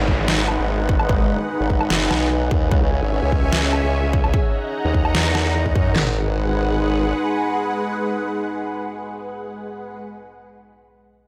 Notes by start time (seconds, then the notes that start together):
Already playing: G#3 D#4 B4 F#5 G#5, downlifter
0.00 G#1 B4
0.05 F#5, kick
0.28 snare
0.48 low woodblock
0.59 G#1
0.89 kick
1.00 G#1, low woodblock
1.09 kick
1.60 G#1
1.70 kick
1.81 low woodblock
1.90 F#1, snare
2.11 B1, snare, low woodblock
2.51 D#2, kick
2.71 C#2 C#4 C#5 E5 G#5, kick
3.02 G#1
3.13 G#4
3.22 C#2
3.32 kick
3.40 E5
3.53 snare
3.73 low woodblock
3.83 C#2
4.13 kick
4.24 C#2, low woodblock
4.34 D#4 D#5 F#5 A#5, kick
4.55 A#5
4.85 D#2 A#4
4.94 kick
5.05 F#5, low woodblock
5.15 E2, snare
5.35 snare, low woodblock
5.66 kick
5.76 F#2, kick
5.96 G#1 G#3 D#4 G#4 B4 F#5, snare, clap, floor tom
6.02 G#4
6.08 F#5
6.14 B5